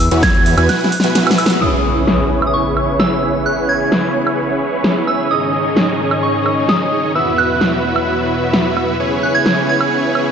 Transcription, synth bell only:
Already playing: E6
0.23 G#6
0.69 F#6
1.38 E6
1.61 D#6
2.47 D#6
2.54 C#6
2.99 E6
3.46 F#6
3.69 G#6
5.08 E6
5.31 D#6
6.23 C#6
6.69 D#6
7.15 E6
7.38 F#6
9.23 F#6
9.35 G#6
9.69 G#6

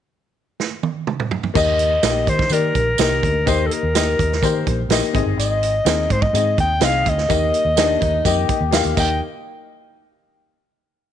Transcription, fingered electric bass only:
1.55 D#2
2.03 A#1
2.28 D#3
2.50 D#3
2.75 A#1
2.99 C2
3.23 D2
3.47 D#2
3.83 D#2
4.19 D#2
4.42 D#3
4.67 A#1
4.89 A#1
5.15 G#1
5.26 G1
5.37 G#1
5.85 D#2
6.11 G#2
6.33 G#2
6.58 D#2
6.81 C2
7.06 D2
7.30 D#2
7.65 D#2
8.02 D#2
8.25 F2
8.49 muted fingered electric bass stroke
8.61 D#2
8.85 D#2
8.97 D#2

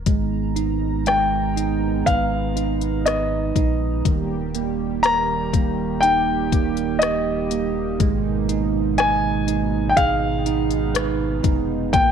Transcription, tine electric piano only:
0.07 G#3
0.56 D#4
1.07 G#3
1.56 D#4
2.06 B4
2.56 D#4
3.06 B4
3.56 D#4
4.06 D#3
4.55 A#3
5.05 A#4
5.54 A#3
6.03 D#4
6.53 A#3
7.02 G4
7.51 A#3
8.00 G#3
8.49 D#4
8.98 D#5
9.47 D#4
9.97 G#4
10.46 D#4
10.95 B4
11.43 D#4
11.93 A#3

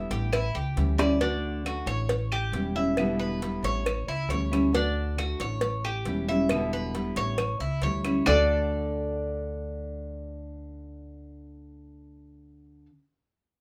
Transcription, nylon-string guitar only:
Already playing: D3 G3 B3 E4
0.33 muted nylon-string guitar stroke
0.76 E3 G3 C#4 E4
0.99 G3 C#4 E4
1.20 D3 A3 D4 F#4
1.65 D3 A3 D4 F#4
2.10 muted nylon-string guitar stroke
2.54 E3 G3 C#4 E4
2.76 G3 C#4 E4
2.98 B2 D3 G3 B3 E4
3.42 D3 G3 B3 E4
3.86 muted nylon-string guitar stroke
4.30 E3 G3 C#4 E4
4.51 G3 C#4 E4
4.73 D3 A3 D4 F#4
5.18 D3 A3 D4 F#4
5.62 muted nylon-string guitar stroke
6.06 E3 G3 C#4 E4
6.29 G3 C#4 E4
6.51 B2 D3 G3 B3 E4
6.94 D3 G3 B3 E4
7.39 muted nylon-string guitar stroke
7.83 E3 G3 C#4 E4
8.05 G3 C#4 E4
8.26 D3 A3 D4 F#4

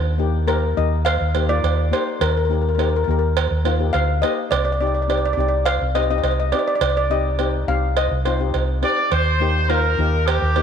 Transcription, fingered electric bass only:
Already playing: D#2
0.77 D#2
1.21 D#2
1.63 D#2
2.21 D#2
3.08 D#2
3.51 D#2
3.94 D2
4.51 C2
5.37 C2
5.81 C2
6.23 C2
6.81 C2
7.68 C2
8.11 C2
8.54 C2
9.12 D#2
9.98 D#2
10.42 D#2

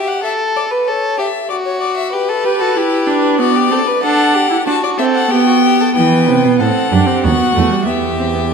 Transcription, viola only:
2.45 G4
2.60 F#4
2.76 E4
3.07 D4
3.39 B3
3.70 C4
4.02 D4
4.50 E4
4.67 D4
4.98 C4
5.31 B3
5.95 B3
6.59 C4
6.91 D4
7.07 C4
7.24 B3
7.55 A3
7.71 G3
7.87 B3
8.19 C4
8.35 B3
8.51 A3

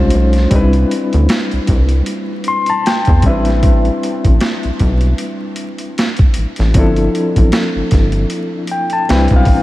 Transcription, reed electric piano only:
Already playing: G#3 C#4 D#4 F4 C5
0.50 G3 C4 D4 D#4
0.56 B4
0.61 E4
2.48 C6
2.70 A5
2.87 G5
3.24 G3 C4 D4 E4 E5
3.29 B4
6.74 F3 C4 D4 E4
6.79 A4
8.71 G5
8.93 A5
9.09 G3 C4 D4 E4 B4 G5
9.36 F5

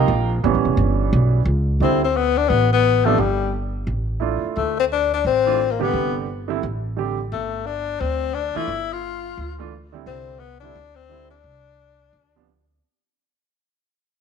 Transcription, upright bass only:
0.08 A#1
0.44 A1
0.54 G1
0.65 E1
0.77 G1
1.13 B1
1.45 C#2
1.80 D2
2.50 A1
3.18 G1
3.87 A1
4.45 muted upright bass stroke
4.57 D2
5.25 A1
5.93 G1
6.63 A1
7.32 G1
8.00 D2
8.56 muted upright bass stroke
8.68 G1
9.37 D2
10.06 C2
10.75 D2
11.44 C2
12.13 D2

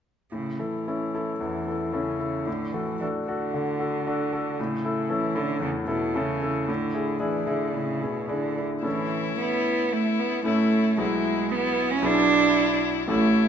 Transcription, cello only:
0.32 C#3
0.60 E3
1.40 E3
1.93 C#3
2.45 D3
2.72 E3
3.00 E3
3.28 D3
4.59 C#3
5.10 E3
5.36 D3
5.62 C#3
5.88 B2
6.16 C#3
6.69 D3
7.22 E3
7.47 D3
7.75 C#3
8.04 B2
8.30 D3
8.84 E3
9.40 B3
9.93 A3
10.20 B3
10.45 A3
10.99 G#3
11.52 B3
11.91 C#4
12.05 D4
13.09 A3

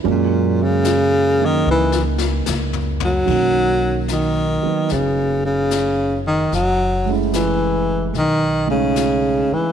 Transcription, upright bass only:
0.05 F#2
1.66 C#2
2.48 C#2
3.28 B1
4.64 muted upright bass stroke
4.92 F#1
6.52 F#1
8.14 B1
9.51 muted upright bass stroke

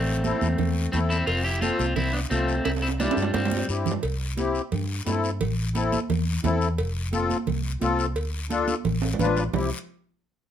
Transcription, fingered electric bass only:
Already playing: A1
0.42 E2
0.59 E2
0.93 E2
1.28 F1
1.79 C2
1.97 C2
2.31 C2
2.65 C2
3.17 G2
3.34 G2
3.69 G2
4.03 C2
4.72 G2
5.06 G2
5.41 A1
6.10 E2
6.44 E2
6.78 F1
7.47 C2
7.82 C2
8.16 D2
8.85 A1
9.19 A1
9.54 C2

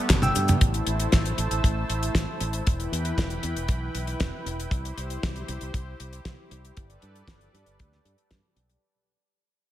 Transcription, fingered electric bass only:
0.10 G1
0.36 G2
0.61 A1
0.87 A1
1.13 A1
1.38 A1
1.51 A1
1.64 A1
1.90 A1
2.15 A1
2.41 A1
2.67 E1
2.92 E2
3.18 E1
3.43 E2
3.56 E1
3.69 B1
3.95 B1
4.21 E1
4.46 E1
4.71 C2
4.97 C2
5.23 C2
5.49 C2
5.61 C2
5.74 C2
6.00 C2
6.25 C2
6.51 C2
6.77 G1
7.03 G2
7.28 G1
7.54 G2
7.67 G1
7.80 D2
8.05 G2
8.31 G2
8.56 B1

